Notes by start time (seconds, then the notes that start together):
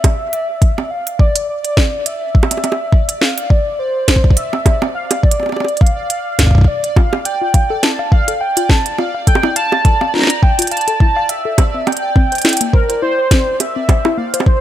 Already playing: D5 E5
0.04 kick, closed hi-hat, high bongo
0.33 closed hi-hat
0.62 kick, closed hi-hat
0.78 high bongo
0.91 F5
1.07 closed hi-hat
1.19 D5, kick
1.36 closed hi-hat
1.48 D5
1.65 closed hi-hat
1.77 kick, snare
2.06 E5, closed hi-hat
2.35 kick
2.43 high bongo
2.51 closed hi-hat, high bongo
2.57 high bongo
2.64 closed hi-hat, high bongo
2.72 high bongo
2.92 kick
3.09 closed hi-hat
3.21 F5, snare
3.38 closed hi-hat
3.50 D5, kick
3.79 C5
4.08 kick, snare, closed hi-hat
4.16 kick
4.24 kick
4.30 kick
4.37 E5, closed hi-hat
4.53 high bongo
4.66 kick, closed hi-hat, high bongo
4.82 high bongo
4.95 F5
5.11 closed hi-hat, high bongo
5.23 D5, kick
5.31 closed hi-hat
5.40 high bongo
5.43 high bongo
5.46 high bongo
5.49 high bongo
5.52 high bongo
5.56 high bongo
5.60 high bongo
5.64 high bongo
5.68 closed hi-hat
5.77 closed hi-hat
5.81 F5, kick
5.87 closed hi-hat
6.10 closed hi-hat
6.39 kick, snare, closed hi-hat
6.43 kick
6.47 kick
6.51 kick
6.55 kick
6.58 kick
6.61 kick
6.64 D5, kick
6.84 closed hi-hat
6.96 F4 F5, kick, high bongo
7.13 high bongo
7.25 G5, closed hi-hat
7.41 F4
7.54 F5, kick, closed hi-hat
7.70 A4
7.83 E4 A5, snare, closed hi-hat
7.99 F5
8.12 F5, kick
8.28 A4, closed hi-hat
8.41 F5 G5
8.57 F4, closed hi-hat
8.69 A5, kick, snare
8.86 closed hi-hat
8.98 F4 F5, high bongo
9.14 F5
9.27 A4 G5, kick, closed hi-hat
9.35 high bongo
9.43 E4, high bongo
9.56 F5 A5, closed hi-hat
9.72 F5, high bongo
9.85 A4, kick, closed hi-hat
10.01 F5, high bongo
10.14 F4 A#5, snare
10.16 snare
10.19 snare
10.22 snare
10.23 snare
10.27 snare, closed hi-hat
10.43 G5, kick
10.59 F4, closed hi-hat
10.62 closed hi-hat
10.67 closed hi-hat
10.71 F5 A5, closed hi-hat
10.77 closed hi-hat
10.81 closed hi-hat
10.88 A4, closed hi-hat
11.00 E4 A5, kick
11.16 F5
11.29 E5 F5, closed hi-hat
11.45 A4
11.58 C5, kick, closed hi-hat, high bongo
11.74 C4
11.87 G5, closed hi-hat, high bongo
11.92 closed hi-hat
11.97 closed hi-hat
12.16 C4, kick
12.32 C5, closed hi-hat
12.35 closed hi-hat
12.38 closed hi-hat
12.42 E4, snare, closed hi-hat
12.45 closed hi-hat
12.49 closed hi-hat
12.53 closed hi-hat
12.57 A#3, closed hi-hat
12.61 closed hi-hat
12.73 A#4 C5, kick
12.90 C5, closed hi-hat
13.02 E4 C5
13.19 C5
13.31 C4, kick, snare, closed hi-hat
13.60 E5, closed hi-hat, high bongo
13.76 C4
13.89 C5, kick, closed hi-hat, high bongo
14.05 E4, high bongo
14.18 A#3 F5
14.34 C5, closed hi-hat
14.40 high bongo
14.46 C5, kick